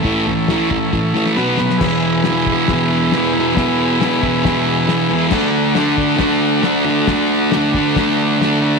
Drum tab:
CC |----------------|x---------------|----------------|x---------------|
HH |----------------|----o---o---o---|o---o---o---o---|----o---o---o---|
SD |----o---o-ooo-oo|o---o---o---o---|o---o---o---o---|o---o---o---o---|
FT |o-o-o-o---------|----------------|----------------|----------------|
BD |o-----o-o-------|o-----o-o-------|o-----o-o-------|o-----o-o-------|

CC |----------------|
HH |o---o---o---o---|
SD |o---o---o---o---|
FT |----------------|
BD |o-----o-o-------|